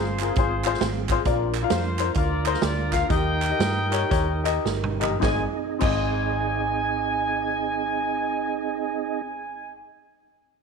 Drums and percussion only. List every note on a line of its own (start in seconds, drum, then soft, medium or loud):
0.19 clap loud
0.19 closed hi-hat medium
0.36 kick loud
0.36 closed hi-hat medium
0.65 clap loud
0.65 closed hi-hat medium
0.74 snare soft
0.81 snare loud
0.81 closed hi-hat loud
1.08 kick medium
1.08 clap loud
1.08 closed hi-hat medium
1.25 kick loud
1.25 closed hi-hat medium
1.54 clap medium
1.54 closed hi-hat medium
1.70 snare loud
1.70 closed hi-hat loud
1.98 clap loud
1.98 closed hi-hat medium
2.14 kick loud
2.14 closed hi-hat medium
2.45 clap loud
2.45 closed hi-hat medium
2.54 snare soft
2.62 snare loud
2.62 closed hi-hat medium
2.92 kick medium
2.92 snare soft
2.92 clap medium
2.92 closed hi-hat medium
3.10 kick loud
3.10 closed hi-hat loud
3.42 clap medium
3.42 closed hi-hat medium
3.60 snare loud
3.60 closed hi-hat loud
3.92 clap loud
3.92 closed hi-hat medium
4.11 kick loud
4.11 closed hi-hat medium
4.45 clap loud
4.45 closed hi-hat medium
4.65 snare medium
4.84 mid tom medium
5.02 clap medium
5.02 floor tom medium
5.23 kick loud
5.23 snare medium
5.23 clap medium
5.82 kick loud
5.82 clap medium
5.82 crash medium